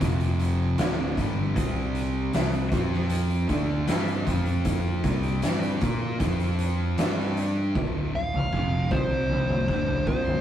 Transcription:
0.00 F1 F2 C3 F3, kick, closed hi-hat
0.20 closed hi-hat
0.40 closed hi-hat
0.78 D1 D2 A2 D3, snare, closed hi-hat
1.17 G1 G2 D3 G3, kick, closed hi-hat
1.54 C2 C3 G3 C4, kick, closed hi-hat
1.95 closed hi-hat
2.33 C2 C3 G3, snare, closed hi-hat
2.52 closed hi-hat
2.72 F2 F3 C4 F4, kick, closed hi-hat
2.93 snare
3.10 closed hi-hat
3.30 closed hi-hat
3.49 D2 D3 A3 D4, kick, closed hi-hat
3.87 G2 G3 D4 G4, snare, closed hi-hat
4.07 closed hi-hat
4.26 F2 F3 C4 F4, kick, closed hi-hat
4.45 closed hi-hat
4.65 kick, closed hi-hat
5.04 C2 C3 G3 C4, kick, closed hi-hat
5.23 closed hi-hat
5.42 G2 G3 D4 G4, snare, closed hi-hat
5.62 closed hi-hat
5.81 A#2 A#3 F4 A#4, kick, closed hi-hat
6.20 F2 F3 C4 F4, kick, closed hi-hat
6.40 closed hi-hat
6.59 closed hi-hat
6.97 G2 G3 D4 G4, snare, closed hi-hat
7.19 snare
7.37 closed hi-hat
7.75 D1 D2 A2 D3, kick, floor tom
8.14 D1 D2 A2 F5
8.34 floor tom
8.52 F1 F2 C3 F3, kick
8.91 C2 C3 G3 C4 C5, kick, floor tom
9.29 floor tom
9.49 mid tom
9.68 D1 D2 A2 D3, kick
9.87 floor tom
10.07 C2 C3 G3 C4 C5, kick
10.26 mid tom

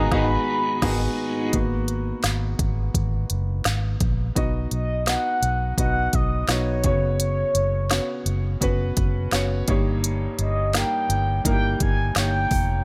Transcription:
Already playing: G#2 D#3 G#3 B3 D#4 F#4 G#4 D#5 F#5 A#5
0.11 G#1 D#3 B3 D#4 F#4 G#4 D#5 B5, kick, snare
0.82 G#1 D#3 B3 D#4 F#4 G#4 D#5, kick, snare, crash
1.53 G#1 A#3 B3 F#4, kick, closed hi-hat
1.88 closed hi-hat
2.24 G#1, snare, clap, closed hi-hat
2.59 G#1, kick, closed hi-hat
2.94 G#1, kick, closed hi-hat
3.30 F#1, closed hi-hat
3.65 G#1, snare, clap, closed hi-hat
4.00 A#1, kick, closed hi-hat
4.35 B1 B3 D#4 F#4 D#5, kick, closed hi-hat
4.71 B1 D#5, closed hi-hat
5.06 B3 D#4 F#4 D#5 F#5, snare, clap, closed hi-hat
5.42 B1, closed hi-hat
5.77 B1 B3 D#4 F#4 D#5 F#5, kick, closed hi-hat
6.13 B1 D#5, kick, closed hi-hat
6.48 B1 B3 D#4 F#4 C#5 D#5, snare, clap, closed hi-hat
6.84 F#1 C#3 B3 C#4 F#4 C#5, kick, closed hi-hat
7.20 C#5, closed hi-hat
7.55 F#1, closed hi-hat
7.90 B3 C#4 F#4 C#5, snare, clap, closed hi-hat
8.26 F#1, closed hi-hat
8.61 F#1 B3 C#4 F#4 B4, kick, closed hi-hat
8.97 F#1, kick, closed hi-hat
9.32 F#1 B3 C#4 F#4 C#5, snare, clap, closed hi-hat
9.68 G1 G2 G3 A#3 D#4 G4 C#5, kick, closed hi-hat
10.04 closed hi-hat
10.39 G1 D#5, closed hi-hat
10.73 A#3 D#4 G4 A#4 G5, snare, clap, closed hi-hat
11.09 G1, closed hi-hat
11.44 G1 A#3 D#4 E4 A#4 G5, kick, closed hi-hat
11.52 G4
11.80 G1 G#5, kick, closed hi-hat
12.15 G1 A#3 D#4 G4 C#5 G5, snare, clap, closed hi-hat
12.51 F1, kick, open hi-hat

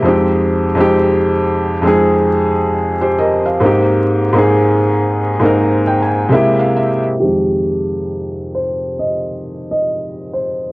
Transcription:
0.03 F2 G#3 C4
0.07 D#4 G4
0.75 F2 G#3 C4
0.79 D#4 G4
1.82 F2 G#3 C4
1.86 D#4 G#4
3.01 G4 C5
3.19 A#4 D#5
3.46 C5 F5
3.60 G#2 A#3 C4
3.64 D#4 G4
4.32 G#2 A#3 C4
4.37 D#4 G#4
5.39 G#2 A#3 C4
5.44 D#4 A#4
5.87 G5
6.02 G#5
6.29 C3 G#3 A#3 E5
6.33 E4 G4
6.59 F5
6.77 E5
7.20 F2 D#3 G#3 G4
8.55 C5
8.99 D#5
9.71 D#5
10.33 C5

